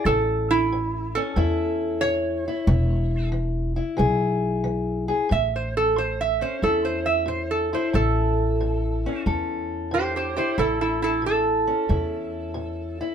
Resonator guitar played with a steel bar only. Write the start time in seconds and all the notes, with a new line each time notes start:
0.06 A4
0.51 E4
1.15 A4
2.01 C#5
5.32 E5
5.56 C5
5.77 A4
5.98 C5
6.21 E5
6.42 C5
6.63 A4
6.85 C5
7.06 E5
7.28 C5
7.51 A4
7.74 C5
7.95 A4
9.94 G4 C5
10.16 G4 C5
10.36 G4 C5
10.58 E4 A4
10.81 E4 A4
11.02 E4 A4
11.26 A4